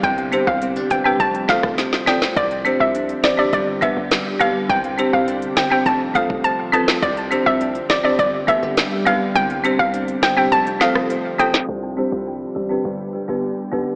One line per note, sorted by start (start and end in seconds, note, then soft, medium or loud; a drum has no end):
0.00 0.37 C2 loud
0.00 1.26 C3 medium
0.00 1.18 D3 medium
0.00 1.18 G3 medium
0.00 1.17 G4 loud
0.00 0.13 G5 loud
0.00 kick loud
0.00 closed hi-hat medium
0.18 closed hi-hat soft
0.32 0.44 C4 medium
0.32 0.62 C4 medium
0.32 0.44 D4 medium
0.32 0.44 G4 medium
0.32 0.45 C5 medium
0.32 closed hi-hat medium
0.47 0.81 C2 loud
0.47 0.56 F5 medium
0.47 kick medium
0.62 0.76 C4 medium
0.62 closed hi-hat medium
0.76 1.26 D4 medium
0.76 closed hi-hat medium
0.90 1.13 G1 loud
0.90 1.49 C4 medium
0.90 0.96 G4 medium
0.90 0.97 B4 medium
0.90 1.00 G5 medium
0.90 closed hi-hat medium
1.04 1.17 C4 medium
1.04 1.17 D4 medium
1.04 1.17 G4 medium
1.04 1.18 B4 medium
1.04 1.14 G5 medium
1.20 1.54 F1 loud
1.20 2.42 F2 medium
1.20 1.29 A5 medium
1.20 kick medium
1.20 closed hi-hat medium
1.35 closed hi-hat soft
1.48 2.42 A3 medium
1.48 1.60 C4 medium
1.48 1.61 F4 medium
1.48 1.61 A4 medium
1.48 1.61 C5 medium
1.48 1.58 F5 medium
1.48 kick medium
1.48 snare medium
1.48 closed hi-hat medium
1.63 1.86 F1 medium
1.63 kick loud
1.63 cross-stick loud
1.78 2.42 F3 medium
1.78 snare medium
1.78 closed hi-hat medium
1.93 snare medium
2.06 2.19 A1 medium
2.06 2.19 C4 medium
2.06 2.42 C4 medium
2.06 2.19 F4 medium
2.06 2.19 A4 medium
2.06 2.19 D5 medium
2.06 2.17 G5 medium
2.06 snare loud
2.06 closed hi-hat medium
2.22 snare medium
2.36 2.70 C2 loud
2.36 3.59 C3 medium
2.36 4.67 D3 medium
2.36 5.83 G3 medium
2.36 5.83 G4 medium
2.36 2.46 D5 loud
2.36 kick loud
2.36 closed hi-hat medium
2.51 closed hi-hat soft
2.65 2.77 C4 medium
2.65 3.23 C4 medium
2.65 2.77 D4 medium
2.65 2.77 G4 medium
2.65 2.78 C5 medium
2.65 closed hi-hat medium
2.80 3.14 C2 loud
2.80 2.89 E5 medium
2.95 4.40 D4 medium
2.95 closed hi-hat medium
3.09 closed hi-hat medium
3.23 3.46 A1 medium
3.23 3.59 C4 medium
3.23 3.29 G4 medium
3.23 3.30 C5 medium
3.23 3.33 D5 medium
3.23 snare loud
3.23 closed hi-hat medium
3.37 3.50 C4 medium
3.37 3.50 D4 medium
3.37 3.50 G4 medium
3.37 3.51 C5 medium
3.37 3.48 D5 medium
3.53 3.87 G1 loud
3.53 4.75 G2 medium
3.53 3.62 D5 medium
3.53 kick medium
3.53 closed hi-hat medium
3.81 3.93 B3 medium
3.81 4.75 B3 medium
3.81 3.94 D4 medium
3.81 3.94 G4 medium
3.81 3.94 B4 medium
3.81 3.91 E5 medium
3.81 kick medium
3.81 closed hi-hat medium
3.97 4.19 G1 medium
4.11 4.75 G3 medium
4.11 snare loud
4.11 closed hi-hat medium
4.39 4.52 B1 loud
4.39 4.52 B3 medium
4.39 4.52 D4 medium
4.39 4.75 D4 medium
4.39 4.52 G4 medium
4.39 4.52 B4 medium
4.39 4.50 F5 medium
4.39 closed hi-hat medium
4.69 5.03 C2 loud
4.69 5.92 C3 medium
4.69 4.79 G5 loud
4.69 kick loud
4.69 closed hi-hat medium
4.84 closed hi-hat soft
4.98 5.10 C4 medium
4.98 5.57 C4 medium
4.98 5.10 D4 medium
4.98 5.10 G4 medium
4.98 5.11 C5 medium
4.98 closed hi-hat medium
5.13 5.47 C2 loud
5.13 5.22 F5 medium
5.28 5.92 D4 medium
5.28 closed hi-hat medium
5.42 closed hi-hat medium
5.56 5.79 G1 loud
5.56 6.15 C4 medium
5.56 5.62 G4 medium
5.56 5.63 C5 medium
5.56 5.66 G5 medium
5.56 snare loud
5.56 closed hi-hat medium
5.70 5.83 C4 medium
5.70 5.83 D4 medium
5.70 5.83 G4 medium
5.70 5.84 C5 medium
5.70 5.81 G5 medium
5.86 6.20 F1 loud
5.86 7.08 F2 medium
5.86 5.95 A5 medium
5.86 kick medium
5.86 closed hi-hat medium
6.14 7.08 A3 medium
6.14 6.26 C4 medium
6.14 6.27 F4 medium
6.14 6.27 A4 medium
6.14 6.27 C5 medium
6.14 6.24 F5 medium
6.14 kick medium
6.14 closed hi-hat medium
6.30 6.52 F1 medium
6.30 kick loud
6.44 7.08 F3 medium
6.44 6.53 A5 medium
6.44 closed hi-hat medium
6.72 6.85 A1 medium
6.72 6.85 C4 medium
6.72 7.08 C4 medium
6.72 6.85 F4 medium
6.72 6.85 A4 medium
6.72 6.85 B4 medium
6.72 6.82 A5 medium
6.72 closed hi-hat medium
6.88 snare loud
7.02 7.36 C2 loud
7.02 8.25 C3 medium
7.02 10.49 D3 medium
7.02 10.49 G3 medium
7.02 9.33 G4 medium
7.02 7.12 D5 loud
7.02 kick loud
7.02 closed hi-hat medium
7.17 closed hi-hat soft
7.31 7.43 C4 medium
7.31 7.89 C4 medium
7.31 7.43 D4 medium
7.31 7.43 G4 medium
7.31 7.44 C5 medium
7.31 closed hi-hat medium
7.46 7.80 C2 medium
7.46 7.55 E5 medium
7.61 9.06 D4 medium
7.61 closed hi-hat medium
7.75 closed hi-hat medium
7.89 8.12 A1 medium
7.89 8.25 C4 medium
7.89 7.95 G4 medium
7.89 7.99 D5 medium
7.89 7.96 D5 medium
7.89 snare loud
7.89 closed hi-hat medium
8.04 8.16 C4 medium
8.04 8.16 D4 medium
8.04 8.16 G4 medium
8.04 8.17 C5 medium
8.04 8.14 D5 medium
8.19 8.53 G1 loud
8.19 9.41 G2 medium
8.19 8.28 D5 medium
8.19 kick medium
8.19 closed hi-hat medium
8.47 8.63 A3 medium
8.47 8.59 B3 medium
8.47 8.60 D4 medium
8.47 8.60 G4 medium
8.47 8.60 B4 medium
8.47 8.57 E5 medium
8.47 kick medium
8.47 closed hi-hat medium
8.63 8.85 G1 medium
8.63 9.41 B3 medium
8.77 9.41 G3 medium
8.77 snare loud
8.77 closed hi-hat medium
9.05 9.18 B1 loud
9.05 9.18 B3 medium
9.05 9.18 D4 medium
9.05 9.41 D4 medium
9.05 9.18 G4 medium
9.05 9.19 B4 medium
9.05 9.16 F5 medium
9.05 closed hi-hat medium
9.35 9.69 C2 loud
9.35 10.58 C3 medium
9.35 9.45 G5 loud
9.35 closed hi-hat medium
9.50 closed hi-hat soft
9.64 9.76 C4 medium
9.64 10.23 C4 medium
9.64 9.76 D4 medium
9.64 9.76 G4 medium
9.64 9.77 C5 medium
9.64 closed hi-hat medium
9.79 10.13 C2 loud
9.79 9.88 F5 medium
9.94 10.58 D4 medium
9.94 closed hi-hat medium
10.08 closed hi-hat medium
10.22 10.45 G1 loud
10.22 10.81 C4 medium
10.22 10.28 G4 medium
10.22 10.29 C5 medium
10.22 10.32 G5 medium
10.22 snare loud
10.22 closed hi-hat medium
10.37 10.49 C4 medium
10.37 10.49 D4 medium
10.37 10.49 G4 medium
10.37 10.50 C5 medium
10.37 10.46 G5 medium
10.52 10.86 F1 loud
10.52 11.74 F2 medium
10.52 10.61 A5 medium
10.52 closed hi-hat medium
10.67 closed hi-hat medium
10.80 11.74 A3 medium
10.80 10.92 C4 medium
10.80 10.93 F4 medium
10.80 10.93 A4 medium
10.80 10.93 C5 medium
10.80 10.90 F5 medium
10.80 snare medium
10.80 closed hi-hat medium
10.95 11.18 F1 medium
10.95 cross-stick loud
11.10 11.74 F3 medium
11.10 closed hi-hat medium
11.38 11.51 A1 medium
11.38 11.51 C4 medium
11.38 11.69 C4 medium
11.38 11.51 F4 medium
11.38 11.51 A4 medium
11.38 11.52 C5 medium
11.38 11.48 G5 medium
11.38 closed hi-hat medium
11.54 snare loud
11.69 12.02 C2 loud
11.69 12.91 C3 medium
11.69 13.96 D3 medium
11.69 13.96 G3 medium
11.69 12.26 D4 medium
11.69 13.96 G4 medium
11.97 12.56 G3 medium
11.97 12.09 C4 medium
11.97 12.09 D4 medium
11.97 12.09 G4 medium
11.97 12.10 C5 medium
12.12 12.46 C2 medium
12.27 13.43 D4 medium
12.55 12.78 A1 medium
12.55 13.14 G3 medium
12.55 12.61 G4 medium
12.55 12.62 C5 medium
12.69 12.82 C4 medium
12.69 12.82 D4 medium
12.69 12.82 G4 medium
12.69 12.83 B4 medium
12.85 13.19 G1 loud
12.85 13.96 G2 medium
13.13 13.96 G3 medium
13.13 13.20 G4 medium
13.13 13.20 B4 medium
13.28 13.51 G1 medium
13.28 13.40 B3 medium
13.28 13.40 D4 medium
13.28 13.41 G4 medium
13.28 13.41 B4 medium
13.43 13.96 D4 medium
13.72 13.84 B1 medium
13.72 13.84 B3 medium
13.72 13.96 B3 medium
13.72 13.84 D4 medium
13.72 13.84 G4 medium
13.72 13.85 B4 loud